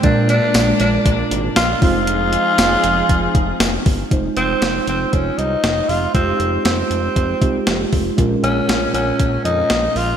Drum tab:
HH |xxxxxxxo|xxxxxxxo|xxxxxxxo|xxxxxxxo|
TB |--x---x-|--x---x-|--------|--------|
SD |--o---o-|--o---o-|--o---o-|--o---o-|
BD |o---o--o|----oo-o|o---o---|o---oo-o|

HH |xxxxxxxo|
TB |--------|
SD |--o---o-|
BD |o---o---|